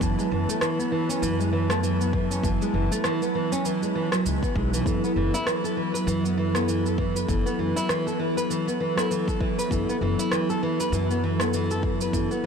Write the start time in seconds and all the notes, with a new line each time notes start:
Already playing: F#3 E4 B4 A5
0.00 F#1 E3 F#3 B3 E4 A5, kick, cabasa
0.18 G#3, cabasa
0.32 F#1 E3
0.49 A3, cabasa
0.61 E3, cross-stick, cabasa
0.79 B3, cabasa
0.92 E3
1.09 C#4, cabasa
1.22 F#2 E3, cabasa
1.40 G#3, cabasa
1.53 E3
1.68 F#3 A3 B3 E4, cross-stick, cabasa
1.72 A5
1.83 E3, cabasa
2.01 B3, cabasa
2.13 E3, kick
2.31 C#4, cabasa
2.41 F#1 E3 F#3 B3 E4, kick, cabasa
2.45 A5
2.61 G#3, cabasa
2.74 F#1 E3
2.91 A3, cabasa
3.04 E3, cross-stick, cabasa
3.22 B3, cabasa
3.35 E3
3.52 C#4, cabasa
3.65 E3, cabasa
3.82 G#3, cabasa
3.95 E3
4.12 F#3, cross-stick, cabasa
4.25 C#2 G#3, cabasa
4.43 B3, kick, cabasa
4.56 B1 G#3, kick
4.73 E3, cabasa
4.83 F#1 E3 F#3 B3 E4, kick, cabasa
4.88 A4
5.04 B3, cabasa
5.16 F#1 E3
5.34 E4, cabasa
5.47 E3, cross-stick, cabasa
5.64 A4, cabasa
5.77 E3
5.94 B4, cabasa
6.07 F#2 E3, cabasa
6.24 B3, cabasa
6.37 E3
6.53 F#3 B3 E4, cross-stick, cabasa
6.57 A4
6.68 E3, cabasa
6.86 A4, cabasa
6.98 E3, kick
7.16 B4, cabasa
7.27 F#1 E3 F#3 B3 E4 A4, kick, cabasa
7.46 B3, cabasa
7.59 F#1 E3
7.76 E4, cabasa
7.89 E3, cross-stick, cabasa
8.07 A4, cabasa
8.19 E3
8.37 B4, cabasa
8.50 E3, cabasa
8.67 B3, cabasa
8.80 E3
8.96 F#3 B3 E4, cross-stick, cabasa
9.00 A4
9.11 E3, cabasa
9.28 A4, kick, cabasa
9.41 E3, kick
9.58 B4, cabasa
9.69 F#1 E3 F#3 B3 E4, kick, cabasa
9.73 A4
9.89 B3, cabasa
10.01 F#1 E3
10.19 E4, cabasa
10.32 E3, cross-stick, cabasa
10.50 A4, cabasa
10.63 E3
10.80 B4, cabasa
10.92 F#2 E3, cabasa
11.10 B3, cabasa
11.24 E3
11.38 F#3 B3 E4 A4, cross-stick, cabasa
11.53 E3, cabasa
11.71 A4, cabasa
11.83 E3, kick
12.01 B4, cabasa
12.11 F#1 E3 F#3 B3 E4 A4, kick, cabasa
12.31 B3, cabasa